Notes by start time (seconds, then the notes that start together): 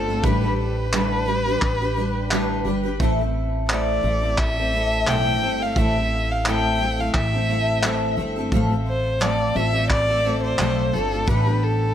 Already playing: G1 A4
0.08 A3 C4 F4 A4
0.23 A1 A2 D3 G3 D4 G4 B4, kick
0.42 G3 D4 G4 B4
0.60 B4
0.93 A2 D3 G3 D4 G4 B4, clap
1.26 G3 D4 G4 B4
1.46 G3 D4 G4 B4
1.62 A1, kick, clap
1.80 G3 D4 G4 B4
1.96 G3 D4 G4 B4
2.31 A2 D3 G3 D4 G4 B4, clap
2.65 G1 G3 D4 G4 B4
2.83 G3 D4 G4 B4
3.00 A1 A2 E3 A3 C4 E4 A4, kick
3.19 A3 C4 E4 A4
3.69 A2 E3 A3 C4 E4 A4 D5, clap
4.03 A1 A3 C4 E4 A4
4.22 A3 C4 E4 A4
4.38 E5, kick, clap
4.57 A3 C4 E4 A4
4.72 A3 C4 E4 A4
5.07 B1 A2 E3 A3 C4 E4 A4 G5, clap
5.41 G1 A3 C4 E4 A4
5.60 A3 C4 E4 A4 F5
5.76 A1 A2 E3 A3 C4 E4 A4 E5, kick
5.96 A3 C4 E4 A4
6.32 F5
6.45 A2 E3 A3 C4 E4 A4 G5, clap
6.80 A3 C4 E4 A4
6.98 A3 C4 E4 A4 F5
7.14 A1 E5, kick, clap
7.33 A3 C4 E4 A4
7.48 A3 C4 E4 A4
7.83 A2 E3 A3 C4 E4 A4, clap
8.17 G1 A3 C4 E4 A4
8.36 A3 C4 E4 A4
8.52 A1 A2 F3 A3 C4 F4 A4, kick
8.70 A3 C4 F4 A4
8.88 C5
9.20 A2 F3 A3 C4 F4 A4 D5, clap
9.54 A1 A3 C4 F4 A4 E5
9.73 A3 C4 F4 A4
9.90 D5, kick, clap
10.08 A3 C4 F4 A4
10.24 A3 C4 F4 A4
10.43 C5
10.58 B1 A2 F3 A3 C4 F4 A4, clap
10.93 G1 A3 C4 F4 A4
11.11 A3 C4 F4 A4
11.27 A1 A2 D3 B3 D4 G4 A4 B4, kick
11.45 B3 D4 G4 A4
11.63 A4